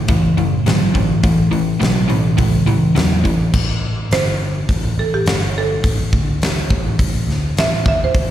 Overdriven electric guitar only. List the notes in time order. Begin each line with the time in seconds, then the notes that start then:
0.08 A2 E3
0.37 A2 E3
0.66 A2 F#3
0.94 A2 E3
1.24 A2 E3
1.51 A2 E3
1.80 A2 F#3
2.09 A2 E3
2.38 A2 E3
2.66 A2 E3
2.95 A2 F#3
3.24 A2 E3